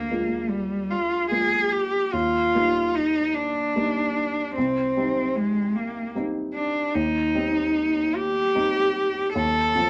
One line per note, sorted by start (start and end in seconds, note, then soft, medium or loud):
0.00 2.15 D2 soft
0.00 0.51 A#3 soft
0.10 1.27 G#3 soft
0.10 1.27 A#3 soft
0.10 1.27 F4 soft
0.50 0.92 G3 soft
0.90 1.30 F4 soft
1.31 2.09 G#3 soft
1.31 2.10 A#3 soft
1.31 2.10 F4 soft
1.31 1.73 G#4 soft
1.72 2.14 G4 soft
2.13 2.53 D#2 soft
2.13 2.96 F4 soft
2.55 3.72 G3 soft
2.55 3.72 A#3 soft
2.55 3.72 D#4 soft
2.95 3.36 D#4 soft
3.34 4.54 D4 medium
3.76 4.52 G3 soft
3.76 4.52 A#3 soft
3.76 4.52 D#4 soft
4.55 4.96 C2 soft
4.55 5.37 C4 soft
4.97 6.12 G3 soft
4.97 6.12 C4 soft
4.97 6.12 D#4 soft
5.36 5.77 G#3 soft
5.75 6.15 A#3 soft
6.15 6.91 G3 soft
6.15 6.92 C4 soft
6.15 6.92 D#4 soft
6.54 6.96 D4 soft
6.94 7.34 D#2 soft
6.94 8.16 D#4 soft
7.35 8.51 G3 soft
7.35 8.51 C4 soft
7.35 8.51 D#4 soft
8.15 9.35 G4 medium
8.55 9.31 G3 soft
8.55 9.31 C4 soft
8.55 9.31 D#4 soft
9.35 9.74 D#2 soft
9.35 9.90 A4 medium
9.75 9.90 F3 soft
9.75 9.90 C4 soft
9.75 9.90 F4 soft